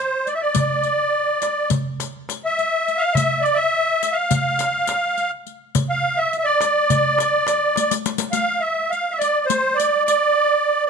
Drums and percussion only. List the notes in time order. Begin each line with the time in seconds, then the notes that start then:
0.27 riq
0.55 riq, darbuka dum
0.83 riq
1.42 riq, darbuka tek
1.70 riq, darbuka dum
2.00 riq, darbuka tek
2.29 riq, darbuka tek
2.58 riq, darbuka ka
2.88 riq
3.15 riq, darbuka dum
3.46 riq
4.03 riq
4.31 riq, darbuka dum
4.59 riq, darbuka tek
4.87 riq, darbuka tek
5.18 riq, darbuka ka
5.47 riq
5.75 riq, darbuka dum
6.33 riq
6.61 riq, darbuka tek
6.90 riq, darbuka dum
7.18 riq, darbuka tek
7.47 riq, darbuka tek
7.76 riq, darbuka tek
7.91 riq, darbuka ka
8.06 riq, darbuka tek
8.18 riq, darbuka ka
8.33 riq
8.93 riq
9.21 riq
9.50 riq
9.80 riq
10.08 riq